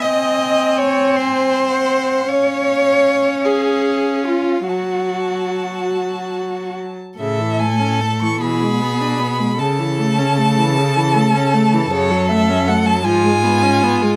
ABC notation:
X:1
M:6/8
L:1/16
Q:3/8=51
K:C#phr
V:1 name="Violin"
g6 g3 f3 | ^e6 e6 | a8- a3 z | [K:A] e2 g2 a c' b6 |
a12 | c2 e2 f a g6 |]
V:2 name="Violin"
^d4 c2 ^B6 | c6 G4 ^E2 | F8- F2 z2 | [K:A] A6 G6 |
A12- | A6 ^E6 |]
V:3 name="Cello"
^d4 c2 ^B6 | c6 G4 ^E2 | F8- F2 z2 | [K:A] A,,6 B,,6 |
C,12 | F,,6 G,,6 |]
V:4 name="Viola"
^B,12 | C12 | F,8- F,3 z | [K:A] C, E, A, C A, E, E, G, B, D B, G, |
C, E, A, C A, E, C, E, A, C A, E, | C, F, A, C A, F, ^E, G, B, C B, G, |]